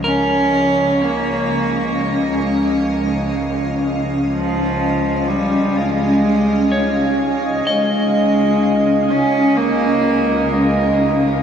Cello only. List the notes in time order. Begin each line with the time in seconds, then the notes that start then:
0.06 C#4
1.04 A#3
2.00 G#3
4.33 F3
5.28 G3
5.76 G#3
7.68 G#3
9.11 C#4
9.57 A#3
10.52 G#3